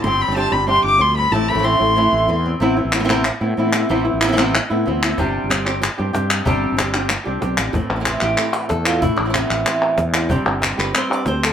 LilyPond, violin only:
\new Staff \with { instrumentName = "Violin" } { \time 4/4 \key a \minor \tempo 4 = 187 c'''8 b''8 a''8 b''8 c'''8 d'''8 c'''8 b''8 | a''8 b''8 c'''2~ c'''8 r8 | r1 | r1 |
r1 | r1 | r1 | r1 |
r1 | }